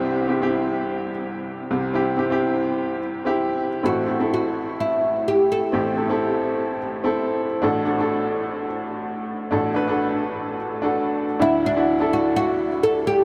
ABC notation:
X:1
M:4/4
L:1/16
Q:"Swing 16ths" 1/4=127
K:Dmix
V:1 name="Oud"
z16 | z16 | F4 F4 E4 G2 A2- | A8- A2 z6 |
z16 | z16 | E2 D4 F2 F4 A2 G2 |]
V:2 name="Upright piano"
[CEG] z [CEG] [CEG]6 z6 z | [CEG] z [CEG] [CEG]6 z2 [CEG]4 z | [CEA] z [CEF] [CEA]6 z6 z | [CEG] z [CEA] [CEA]6 z2 [CEA]4 z |
[DFA] z [DFA] [DFA]6 z6 z | [DFA] z [DFB] [DFA]6 z2 [DFA]4 z | [DEF]2 z [DEF] z [DEA]6 z4 z |]
V:3 name="Upright piano" clef=bass
[C,,C,]12- [C,,C,]2 [C,,C,]2- | [C,,C,]12- [C,,C,]2 z2 | [A,,,A,,]16 | [A,,,A,,]16 |
[A,,,A,,]16 | [A,,,A,,]16 | [D,,D,]16 |]